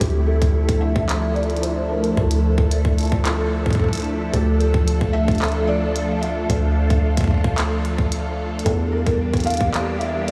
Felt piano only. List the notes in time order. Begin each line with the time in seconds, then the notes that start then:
0.00 G4
0.27 A4
0.81 E5
1.35 D5
1.62 C5
1.89 A#4
2.16 A4
4.32 G4
4.59 A4
5.13 E5
5.67 D5
6.21 E5
8.64 A4
8.92 A#4
9.46 F5
10.00 E5
10.27 D5